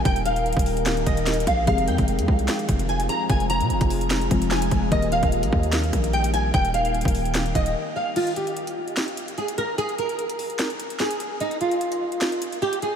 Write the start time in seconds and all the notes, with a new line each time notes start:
Already playing: D#3 G3 A#3 D#4 G4 A#4
0.05 D#1 G5, kick, closed hi-hat
0.16 closed hi-hat
0.26 F5, closed hi-hat
0.36 closed hi-hat
0.46 closed hi-hat
0.53 closed hi-hat
0.57 D#1, kick, closed hi-hat
0.66 open hi-hat
0.77 closed hi-hat
0.86 snare, clap, closed hi-hat
0.97 closed hi-hat
1.06 D#1 D#5, kick, closed hi-hat
1.17 closed hi-hat
1.27 snare, clap, closed hi-hat
1.34 closed hi-hat
1.40 closed hi-hat
1.47 A#1 F5, kick, closed hi-hat
1.66 F1 F3 G#3 C4 F4 G4 G#4 F5, kick, closed hi-hat
1.78 closed hi-hat
1.88 F2 G5, closed hi-hat
1.98 F1, kick, closed hi-hat
2.08 closed hi-hat
2.19 F2, closed hi-hat
2.28 C2, kick
2.39 closed hi-hat
2.48 snare, clap, closed hi-hat
2.59 closed hi-hat
2.69 F1, kick, closed hi-hat
2.79 closed hi-hat
2.89 G#5, closed hi-hat
3.00 closed hi-hat
3.09 A#5, closed hi-hat
3.29 F1 G#5, kick, closed hi-hat
3.40 closed hi-hat
3.50 A#5, closed hi-hat
3.61 C3, closed hi-hat
3.70 F1, closed hi-hat
3.81 F1, kick, closed hi-hat
3.90 open hi-hat
4.01 closed hi-hat
4.10 snare, clap, closed hi-hat
4.21 closed hi-hat
4.30 F1 F3 G#3 C4 F4 G#4, kick, closed hi-hat
4.42 closed hi-hat
4.51 G#5, snare, clap, closed hi-hat
4.62 closed hi-hat
4.71 F1, kick, closed hi-hat
4.90 D#1 D#3 G3 A#3 D#4 G4 A#4 D#5, kick, closed hi-hat
5.02 closed hi-hat
5.12 F5, closed hi-hat
5.23 D#1, kick, closed hi-hat
5.32 closed hi-hat
5.43 A#1, closed hi-hat
5.53 D#2, kick
5.63 closed hi-hat
5.73 snare, clap, closed hi-hat
5.84 closed hi-hat
5.93 A#1, kick, closed hi-hat
6.04 closed hi-hat
6.13 G5, closed hi-hat
6.24 closed hi-hat
6.34 G#5, closed hi-hat
6.54 D#1 G5, kick, closed hi-hat
6.65 closed hi-hat
6.74 F5, closed hi-hat
6.85 closed hi-hat
6.94 closed hi-hat
7.01 closed hi-hat
7.05 D#1, kick, closed hi-hat
7.15 open hi-hat
7.25 closed hi-hat
7.35 snare, clap, closed hi-hat
7.46 closed hi-hat
7.55 D#1 D#5, kick, closed hi-hat
7.66 closed hi-hat
7.96 F5
8.16 F4, closed hi-hat, crash
8.27 closed hi-hat
8.36 G4, closed hi-hat
8.47 closed hi-hat
8.57 closed hi-hat
8.67 closed hi-hat
8.88 closed hi-hat
8.97 snare, clap, closed hi-hat
9.08 closed hi-hat
9.17 closed hi-hat
9.28 closed hi-hat
9.38 G#4, closed hi-hat
9.48 closed hi-hat
9.58 A#4, closed hi-hat
9.78 G#4, closed hi-hat
9.89 closed hi-hat
9.98 A#4, closed hi-hat
10.09 closed hi-hat
10.19 closed hi-hat
10.30 closed hi-hat
10.39 open hi-hat
10.50 closed hi-hat
10.59 snare, clap, closed hi-hat
10.70 closed hi-hat
10.80 closed hi-hat
10.90 closed hi-hat
11.00 G#4, snare, clap, closed hi-hat
11.11 closed hi-hat
11.20 closed hi-hat
11.40 D#4, closed hi-hat
11.51 closed hi-hat
11.61 F4, closed hi-hat
11.71 closed hi-hat
11.81 closed hi-hat
11.92 closed hi-hat
12.12 closed hi-hat
12.21 snare, clap, closed hi-hat
12.32 closed hi-hat
12.42 closed hi-hat
12.52 closed hi-hat
12.62 G4, closed hi-hat
12.73 closed hi-hat
12.82 G#4, closed hi-hat